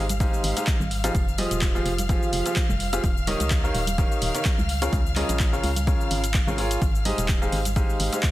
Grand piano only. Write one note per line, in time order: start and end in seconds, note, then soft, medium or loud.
0.20 0.54 G#3 medium
0.20 0.54 D#4 medium
0.20 0.54 G4 medium
0.20 0.54 G#4 medium
0.20 0.54 C5 medium
0.20 0.54 F5 loud
0.57 0.72 G#3 medium
0.57 0.72 D#4 medium
0.57 0.72 G4 medium
0.57 0.72 G#4 medium
0.57 0.72 C5 medium
0.57 0.72 F5 medium
1.04 1.13 F3 loud
1.04 1.13 D#4 loud
1.04 1.13 G4 medium
1.04 1.13 G#4 medium
1.04 1.13 C5 medium
1.04 1.13 F5 loud
1.38 1.72 F3 medium
1.38 1.72 F4 medium
1.38 1.72 G4 medium
1.38 1.72 G#4 medium
1.38 1.72 C5 medium
1.38 1.72 D#5 medium
1.75 1.90 F3 loud
1.75 1.90 F4 medium
1.75 1.90 G4 medium
1.75 1.90 G#4 medium
1.75 1.90 C5 medium
1.75 1.90 F5 loud
2.09 2.43 F3 medium
2.09 2.43 F4 medium
2.09 2.43 G4 medium
2.09 2.43 G#4 medium
2.09 2.43 C5 medium
2.09 2.43 F5 loud
2.46 2.61 F3 medium
2.46 2.61 F4 medium
2.46 2.61 G4 medium
2.46 2.61 G#4 medium
2.46 2.61 C5 medium
2.46 2.61 F5 medium
2.93 3.02 F4 loud
2.93 3.02 G4 medium
2.93 3.02 G#4 loud
2.93 3.02 C5 medium
2.93 3.02 F5 loud
3.27 3.61 D#3 medium
3.27 3.61 D#4 medium
3.27 3.61 G4 medium
3.27 3.61 A#4 medium
3.27 3.61 C#5 medium
3.27 3.61 D#5 loud
3.64 3.79 D#3 loud
3.64 3.79 D#4 medium
3.64 3.79 G4 medium
3.64 3.79 A#4 medium
3.64 3.79 C#5 medium
3.64 3.79 F5 loud
3.98 4.32 D#3 medium
3.98 4.32 D#4 medium
3.98 4.32 G4 medium
3.98 4.32 A#4 medium
3.98 4.32 C#5 medium
3.98 4.32 F5 loud
4.35 4.50 D#3 medium
4.35 4.50 D#4 medium
4.35 4.50 G4 medium
4.35 4.50 A#4 medium
4.35 4.50 C#5 medium
4.35 4.50 F5 medium
4.82 4.97 C#3 loud
4.82 4.97 F4 medium
4.82 4.97 G#4 medium
4.82 4.97 A#4 medium
4.82 4.97 C#5 medium
4.82 4.97 F5 loud
5.16 5.50 C#3 medium
5.16 5.50 F4 medium
5.16 5.50 G#4 medium
5.16 5.50 A#4 medium
5.16 5.50 C#5 medium
5.16 5.50 D#5 loud
5.53 5.68 C#3 loud
5.53 5.68 F4 medium
5.53 5.68 G#4 medium
5.53 5.68 A#4 medium
5.53 5.68 C#5 medium
5.53 5.68 F5 loud
5.87 6.21 C#3 medium
5.87 6.21 F4 medium
5.87 6.21 G#4 medium
5.87 6.21 A#4 medium
5.87 6.21 C#5 medium
5.87 6.21 F5 loud
6.47 6.56 C#3 medium
6.47 6.56 F4 medium
6.47 6.56 G#4 medium
6.47 6.56 A#4 medium
6.47 6.56 C#5 medium
6.47 6.56 F5 loud
6.58 6.80 F4 loud
6.58 6.80 G#4 medium
6.58 6.80 A#4 medium
6.58 6.80 C#5 medium
6.58 6.80 F5 loud
7.05 7.39 G#3 medium
7.05 7.39 D#4 medium
7.05 7.39 G4 medium
7.05 7.39 G#4 medium
7.05 7.39 C5 medium
7.05 7.39 D#5 loud
7.42 7.57 G#3 loud
7.42 7.57 D#4 medium
7.42 7.57 G4 medium
7.42 7.57 G#4 medium
7.42 7.57 C5 medium
7.42 7.57 F5 loud
7.76 8.10 G#3 medium
7.76 8.10 D#4 medium
7.76 8.10 G4 medium
7.76 8.10 G#4 medium
7.76 8.10 C5 medium
7.76 8.10 F5 loud
8.13 8.28 G#3 medium
8.13 8.28 D#4 medium
8.13 8.28 G4 medium
8.13 8.28 G#4 medium
8.13 8.28 C5 medium
8.13 8.28 F5 medium